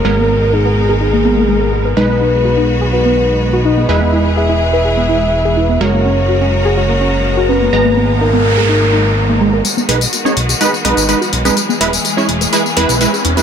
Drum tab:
HH |----------------|----------------|----------------|----------------|
TB |----------------|----------------|----------------|----------------|
CG |----------------|----------------|----------------|----------------|

HH |----------------|x-oxx-oxx-oxx-ox|x-oxx-oxx-oxx-ox|
TB |----------------|xx-xxx-xxx-xxx-x|xx-xxx-xxx-xxx-x|
CG |----------------|-----o----o----o|-----o----o----o|